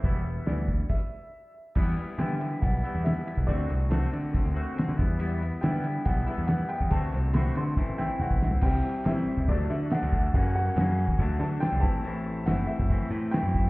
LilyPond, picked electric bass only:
\new Staff \with { instrumentName = "Picked electric bass" } { \clef bass \time 4/4 \key d \mixolydian \tempo 4 = 140 e,,4 d,4 r2 | e,8 r8 d4 b,,8 r16 e,8 r8 b,,16 | d,8 c,4 d8. d,8 r8 d16 e,8~ | e,4 d4 b,,8 r16 e,8 r8 e,16 |
d,8 c,4 d8 a,,16 a,,8 r8 b,,8 r16 | c,8 r8 a,,8 r16 cis,16 d,8 d8. d,8. | fis,4 fis,8. ees,16 d,8 d8 r16 c,16 a,,8~ | a,,4 fis,,8 r16 fis,,8 r16 a,8. fis,8. | }